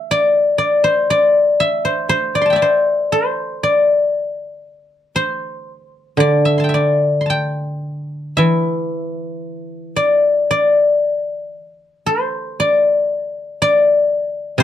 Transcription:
guzheng
Already playing: E5
0.11 D5
0.58 D5
0.84 C5
1.10 D5
1.60 E5
1.85 C5
2.09 C5
2.35 D5
2.41 C6
2.46 A5
2.50 E5 G5
2.56 D5
2.62 C5
3.12 C5
3.63 D5
5.16 C5
6.17 D3 D5
6.45 E5
6.58 A5 C6
6.64 G5
6.69 E5
6.74 D5
7.21 C6
7.26 A5
7.30 G5
8.37 E3 E5
9.96 D5
10.51 D5
12.06 C5
12.60 D5
13.62 D5
14.58 C3 C5

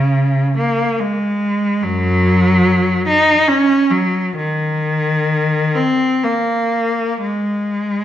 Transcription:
cello
Already playing: C#3
0.58 A#3
1.00 G#3
1.83 F#2 F#3
3.08 D#4
3.48 C#4
3.90 F#3
4.37 D#3
5.75 C4
6.24 A#3
7.23 G#3

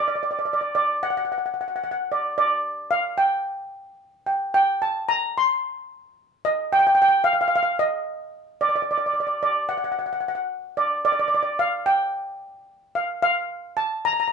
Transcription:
steel pan
0.00 D5
0.08 D5
0.15 D5
0.23 D5
0.31 D5
0.39 D5
0.45 D5
0.53 D5
0.61 D5
0.75 D5
1.03 F#5
1.10 F#5
1.17 F#5
1.25 F#5
1.32 F#5
1.38 F#5
1.46 F#5
1.54 F#5
1.61 F#5
1.68 F#5
1.76 F#5
1.84 F#5
1.91 F#5
2.12 D5
2.38 D5
2.91 F5
3.18 G5
4.26 G5
4.54 G5
4.82 A5
5.09 A#5
5.38 C6
6.45 D#5
6.73 G5
6.79 G5
6.87 G5
6.95 G5
7.02 G5
7.09 G5
7.24 F5
7.33 F5
7.41 F5
7.48 F5
7.56 F5
7.63 F5
7.79 D#5
8.61 D5
8.69 D5
8.76 D5
8.82 D5
8.91 D5
8.98 D5
9.06 D5
9.14 D5
9.20 D5
9.27 D5
9.43 D5
9.69 F#5
9.78 F#5
9.84 F#5
9.92 F#5
9.99 F#5
10.06 F#5
10.13 F#5
10.20 F#5
10.28 F#5
10.35 F#5
10.77 D5
11.05 D5
11.12 D5
11.19 D5
11.28 D5
11.34 D5
11.43 D5
11.59 F5
11.86 G5
12.95 F5
13.22 F5
13.77 A5
14.05 A#5
14.13 A#5
14.20 A#5
14.28 A#5

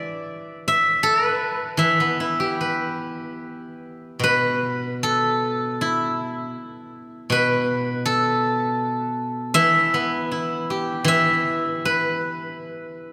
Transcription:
guzheng
Already playing: E3 D4 E4 G4 D5 E5
0.68 E5
1.03 A4
1.25 B4
1.77 E3 E5
2.00 B3
2.20 E4
2.40 G4
2.61 B4
4.19 B2
4.24 B4
5.03 A4
5.81 E4
7.30 B2 B4
8.06 A4
9.54 E3 E5
9.94 B3
10.31 E4
10.70 G4
11.04 E3 E5
11.85 B4

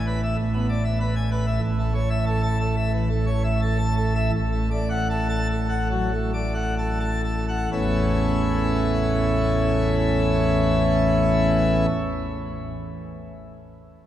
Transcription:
pipe organ
Already playing: A1 A2
0.07 B4
0.23 E5
0.37 A1 A2
0.53 B3
0.69 D5
0.84 E5
1.00 B4
1.16 G#5
1.31 B4
1.46 E5
1.63 A1 A2
1.79 A3
1.95 C#5
2.10 E5
2.26 A4
2.42 A5
2.60 A4
2.77 E5
2.93 E3
3.09 A3
3.27 C#5
3.44 E5
3.62 A4
3.78 A5
3.97 A4
4.15 E5
4.33 A1 A2
4.52 A3
4.71 D5
4.90 F#5
5.10 A4
5.29 A5
5.49 A4
5.69 F#5
5.91 F#3
6.12 A3
6.33 D5
6.54 F#5
6.78 A4
7.00 A5
7.24 A4
7.49 F#5
7.72 A1 E2 E3 A3 C#4 E4

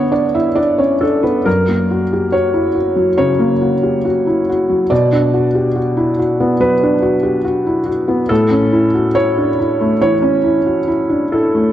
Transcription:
felt piano
Already playing: D3 B3 C#5
0.12 D4 D5
0.34 E4 E5
0.55 D4 D5
0.78 C#4 C#5
1.01 D4 A4
1.23 B3 B4
1.45 F#2 A#4
1.68 A#3
1.91 F#4
2.13 G4
2.32 F#4 C#5
2.54 E4
2.75 F#4
2.96 F#3
3.18 C#3 C#5
3.39 A#3
3.61 F#4
3.83 G4
4.05 F#4
4.27 E4
4.49 F#4
4.69 F#3
4.90 B2 D5
5.12 D4
5.34 F#4
5.55 G4
5.76 F#4
5.97 E4
6.19 F#4
6.40 B3
6.60 F#3 B4
6.83 D4
7.02 F#4
7.23 G4
7.45 F#4
7.66 E4
7.86 F#4
8.08 B3
8.29 A2 A4
8.50 C#4
8.72 E4
8.94 F#4
9.15 E4 C#5
9.38 D4
9.59 E4
9.81 A3
10.02 E3 C#5
10.22 C#4
10.44 E4
10.66 F#4
10.88 E4
11.09 D4
11.32 E4 A4
11.55 A3

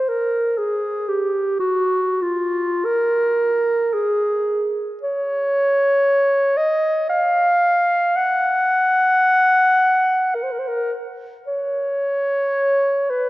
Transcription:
clarinet
0.08 A#4
0.58 G#4
1.08 G4
1.60 F#4
2.22 F4
2.85 A#4
3.94 G#4
5.03 C#5
6.57 D#5
7.09 F5
8.16 F#5
10.35 A#4
10.43 C5
10.52 A#4
10.59 C5
10.67 A#4
11.47 C#5
13.10 B4

